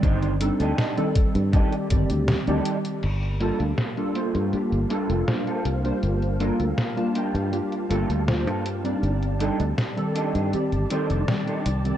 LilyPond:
<<
  \new Staff \with { instrumentName = "String machine" } { \time 4/4 \key f \mixolydian \tempo 4 = 80 << { r1 | <g' a''>1~ | <g' a''>1~ | <g' a''>1 | } \\ { r1 | <bes f''>1~ | <bes f''>1 | d''1 | } >> }
  \new Staff \with { instrumentName = "Clean electric guitar" } { \time 4/4 \key f \mixolydian <d' ees' g' c''>8 r16 <d' ees' g' a'>8. r8 <d' ees' g' a'>16 r4 <d' ees' g' a'>16 r8 | r8 <bes f' a'>16 r8. <bes f' c''>8 r8 <bes f' a'>8 r16 <bes f' a'>16 r8 | r8 <bes f' bes'>16 r8. <bes f' g'>8 r8 <bes f' a'>8 r16 <bes f' a'>16 r8 | r8 <d' ees' g' a'>16 r8. <d' ees' g' a'>8 r8 <d' ees' g' c''>8 r16 <d' ees' g' a'>16 r8 | }
  \new Staff \with { instrumentName = "Synth keys" } { \time 4/4 \key f \mixolydian <ees g c' d''>8 <g c' d' ees' a'>8 r16 <ees g c' a' d''>8. <ees g c' g' d''>8 <ees g c' g' d''>8. <ees g c' g' d''>8. | r8 <g bes d' f' a'>8 r16 <g bes d' f' a'>8. <g bes d' f' g'>8 <g bes d' f' a'>8 <g bes d' f' c''>8. <g bes d' f' c''>16~ | <g bes d' f' c''>8 <g bes d' f' a'>8 r16 <g bes d' f' a''>8. <g bes d' f' g'>8 <g bes d' f' a'>8 <g bes d' f' c''>8. <g c' d' ees' d''>16~ | <g c' d' ees' d''>8 <g c' d' ees' a'>8 r16 <ees g c' a' d''>8. <ees g c' g' d''>8 <ees g c' a' d''>8 <ees g c' d''>8. <ees g c' d''>16 | }
  \new Staff \with { instrumentName = "Fingered electric bass" } { \clef bass \time 4/4 \key f \mixolydian g,,8 r16 d,16 r8. g,16 r8 g,,16 d,16 r16 d,16 r8 | g,,8 r16 d,16 r8. g,16 r16 g,,16 r16 f,,16 r8 c,16 r16 | g,,8 r16 d,16 r8. g,16 r8 g,,16 d,8 g,8 r16 | g,,8 r16 d,16 r8. g,16 r16 g,,16 r16 f,,16 r8 c,16 r16 | }
  \new DrumStaff \with { instrumentName = "Drums" } \drummode { \time 4/4 <hh bd>16 hh16 hh16 hh16 <hh sn>16 hh16 <hh bd>16 hh16 <hh bd>16 hh16 <hh bd>16 hh16 <hh sn>16 hh16 hh16 hh16 | <cymc hh>16 hh16 hh16 hh16 <hh sn>16 hh16 hh16 hh16 hh16 hh16 hh16 hh16 <hh sn>16 hh16 hh16 hh16 | hh16 hh16 hh16 hh16 <hh sn>16 hh16 hh16 hh16 hh16 hh16 hh16 hh16 <hh sn>16 hh16 hh16 hh16 | hh16 hh16 hh16 hh16 <hh sn>16 hh16 hh16 hh16 hh16 hh16 hh16 hh16 <hh sn>16 hh16 hh16 hh16 | }
>>